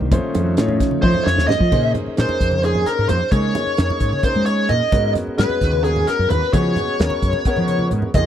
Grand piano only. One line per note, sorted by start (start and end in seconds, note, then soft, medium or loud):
0.11 0.53 A3 medium
0.11 0.53 C#4 medium
0.11 0.53 D#4 medium
0.11 0.53 F4 medium
0.11 0.53 C5 medium
0.57 0.98 A3 medium
0.57 0.99 C#4 medium
0.57 0.99 D#4 medium
0.57 0.99 F4 medium
0.57 0.99 C#5 medium
1.03 1.65 A3 medium
1.03 1.65 C#4 medium
1.03 1.65 D#4 medium
1.03 1.65 F4 medium
1.03 1.65 C5 medium
1.72 2.13 A#3 medium
1.72 2.13 C#4 medium
1.72 2.13 D#4 medium
1.72 2.13 G#4 medium
1.72 2.13 C5 medium
2.16 2.58 A#3 medium
2.16 2.58 C#4 medium
2.16 2.59 D#4 medium
2.16 2.59 G#4 medium
2.16 2.59 A#4 medium
2.63 3.25 A#3 soft
2.63 3.25 C#4 medium
2.63 3.25 D#4 medium
2.63 3.25 G#4 medium
2.63 3.25 C5 medium
3.31 3.73 A#3 medium
3.31 3.73 C#4 medium
3.31 3.73 D#4 medium
3.31 3.73 G#4 medium
3.31 3.74 C#5 medium
3.78 4.19 A#3 medium
3.78 4.19 C#4 medium
3.78 4.19 D#4 medium
3.78 4.20 G#4 medium
3.78 4.20 C#5 medium
4.24 4.86 A#3 medium
4.24 4.86 C#4 medium
4.24 4.86 D#4 medium
4.24 4.87 G#4 medium
4.24 4.87 A#4 medium
4.92 5.33 G#3 medium
4.92 5.34 B3 medium
4.92 5.34 C#4 medium
4.92 5.34 F#4 medium
4.92 5.34 A#4 medium
5.38 5.79 G#3 medium
5.38 5.80 B3 medium
5.38 5.80 C#4 medium
5.38 5.80 F#4 medium
5.38 5.80 G#4 medium
5.83 6.46 G#3 medium
5.83 6.46 B3 soft
5.83 6.46 C#4 medium
5.83 6.46 F#4 medium
5.83 6.47 A#4 medium
6.53 6.95 G#3 medium
6.53 6.94 B3 medium
6.53 6.95 C#4 medium
6.53 6.95 F#4 medium
6.53 6.95 G#4 medium
6.99 7.41 G#3 medium
6.99 7.41 B3 soft
6.99 7.41 C#4 medium
6.99 7.41 F#4 medium
6.99 7.41 A#4 medium
7.46 8.08 G#3 medium
7.46 8.08 B3 medium
7.46 8.08 C#4 medium
7.46 8.08 A#4 medium
7.46 8.08 F#5 medium
8.14 8.26 A#3 medium
8.14 8.26 D#4 medium
8.14 8.26 F4 medium
8.14 8.26 G4 medium
8.14 8.26 G#4 medium